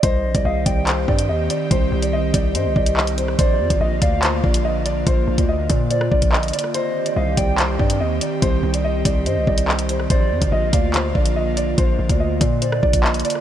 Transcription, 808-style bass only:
X:1
M:4/4
L:1/16
Q:1/4=143
K:Cm
V:1 name="808-style bass" clef=bass
C,,2 B,,, C,, C,,2 C,,4 G,,2 E,,2 z2 | C,,2 C,,4 C,,2 G,, C,, C,,6 | B,,,2 F,, A,,, B,,,2 D,,4 B,,,6 | B,,,2 B,,, D,,3 B,,4 B,,,4 z2 |
z4 C,,2 C,,4 G,,2 E,,2 z2 | C,,2 C,,4 C,,2 G,, C,, C,,6 | B,,,2 F,, A,,, B,,,2 D,,4 B,,,6 | B,,,2 B,,, D,,3 B,,4 B,,,4 z2 |]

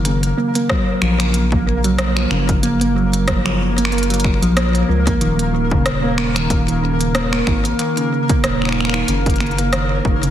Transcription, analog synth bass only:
X:1
M:4/4
L:1/16
Q:"Swing 16ths" 1/4=93
K:Ebm
V:1 name="Analog synth bass" clef=bass
G,,,2 z4 B,,,8 G,,,2- | G,,,8- G,,,3 B,,,3 D,,2 | E,,,12- E,,,2 A,,,2 | z4 E,,,4 G,,,6 G,,,2 |]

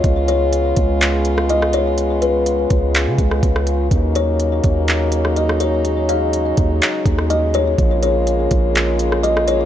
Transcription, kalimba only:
X:1
M:4/4
L:1/8
Q:1/4=124
K:Ebm
V:1 name="Kalimba"
z d4- d e d | z c4- c z2 | z d4- d e d | z f4- f e d |
z d4- d e d |]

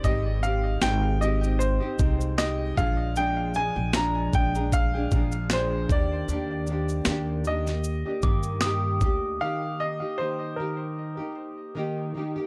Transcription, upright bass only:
X:1
M:4/4
L:1/16
Q:"Swing 16ths" 1/4=77
K:Eb
V:1 name="Upright bass" clef=bass
A,,,4 A,,,4- A,,, z C,,4 B,,,2- | B,,,3 B,,,3 B,,,4 B,,,4 E,,2 | E,,4 E,,4- E,, z G,,4 D,,2 | z16 |]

